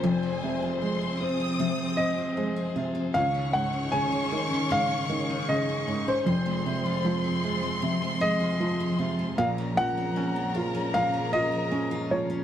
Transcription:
Already playing: steel-string acoustic guitar A#2 C4 C#4 F4, string section F3 C5, grand piano C5
0.03 felt piano F1 F2, steel-string acoustic guitar F3, string section C4 G#4, violin section G#5
0.23 steel-string acoustic guitar C4
0.43 felt piano C3, steel-string acoustic guitar G#4
0.62 steel-string acoustic guitar F4
0.81 felt piano G#3, steel-string acoustic guitar C4, violin section C6
1.01 steel-string acoustic guitar G#4
1.20 felt piano C4, steel-string acoustic guitar F4, violin section D#6
1.40 steel-string acoustic guitar C4
1.59 felt piano C3, steel-string acoustic guitar F3
1.79 steel-string acoustic guitar C4
1.97 felt piano C4, steel-string acoustic guitar G#4, grand piano D#5
2.18 steel-string acoustic guitar F4
2.37 felt piano G#3, steel-string acoustic guitar C4
2.56 steel-string acoustic guitar G#4
2.76 felt piano C3, steel-string acoustic guitar F4
2.95 steel-string acoustic guitar C4
3.14 felt piano C#2, steel-string acoustic guitar C#3, string section D#3 C#4 C#5, grand piano F5, violin section C#6
3.34 steel-string acoustic guitar C#4
3.53 felt piano G#2, steel-string acoustic guitar G#4, grand piano F#5
3.73 steel-string acoustic guitar D#4
3.92 felt piano C#3, steel-string acoustic guitar C#4, grand piano G#5
4.12 steel-string acoustic guitar G#4
4.31 felt piano D#3, steel-string acoustic guitar D#4
4.51 steel-string acoustic guitar C#4
4.70 felt piano G#2, steel-string acoustic guitar C#3, grand piano F5
4.90 steel-string acoustic guitar C#4
5.09 felt piano D#3, steel-string acoustic guitar G#4
5.29 steel-string acoustic guitar D#4
5.49 felt piano C#3, steel-string acoustic guitar C#4, grand piano D#5
5.69 steel-string acoustic guitar G#4
5.87 felt piano G#2, steel-string acoustic guitar D#4
6.08 steel-string acoustic guitar C#4, grand piano C5
6.26 felt piano F1 F2, steel-string acoustic guitar F2, string section F3 C4, violin section C6
6.46 steel-string acoustic guitar G#3
6.66 felt piano C3, steel-string acoustic guitar G#4
6.86 steel-string acoustic guitar F4
7.05 felt piano F3, steel-string acoustic guitar G#3
7.24 steel-string acoustic guitar G#4
7.43 felt piano G#3, steel-string acoustic guitar F4
7.62 steel-string acoustic guitar G#3
7.82 steel-string acoustic guitar F2, felt piano C3
8.02 steel-string acoustic guitar G#3
8.20 felt piano G#3, steel-string acoustic guitar G#4, grand piano D#5
8.40 steel-string acoustic guitar F4
8.60 felt piano F3, steel-string acoustic guitar G#3
8.80 steel-string acoustic guitar G#4
8.99 felt piano C3, steel-string acoustic guitar F4
9.19 steel-string acoustic guitar G#3
9.38 felt piano A#1 A#2, steel-string acoustic guitar A#2, string section C#3 A#4, grand piano F5, violin section A#5
9.58 steel-string acoustic guitar C#4
9.77 felt piano F3, grand piano F#5
9.97 steel-string acoustic guitar C4
10.16 steel-string acoustic guitar C#4, felt piano C#4
10.36 steel-string acoustic guitar F4
10.55 steel-string acoustic guitar C4, felt piano F4
10.75 steel-string acoustic guitar C#4
10.94 steel-string acoustic guitar A#2, felt piano F3, grand piano F5
11.14 steel-string acoustic guitar C#4
11.33 steel-string acoustic guitar F4, felt piano F4, grand piano D#5
11.52 steel-string acoustic guitar C4
11.71 steel-string acoustic guitar C#4, felt piano C#4
11.91 steel-string acoustic guitar F4
12.11 felt piano F3, grand piano C#5
12.30 steel-string acoustic guitar C#4

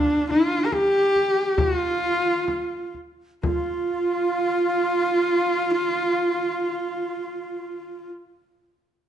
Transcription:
Already playing: horsehead fiddle D4, xiao D4
0.30 horsehead fiddle F4, frame drum
0.65 horsehead fiddle A#4
0.71 xiao G4, horsehead fiddle G4, frame drum
1.15 frame drum
1.34 xiao G4
1.57 xiao F4, horsehead fiddle F#4, frame drum
1.77 horsehead fiddle F4
2.02 frame drum
2.48 frame drum
2.94 frame drum
3.43 xiao F4, horsehead fiddle F4, frame drum

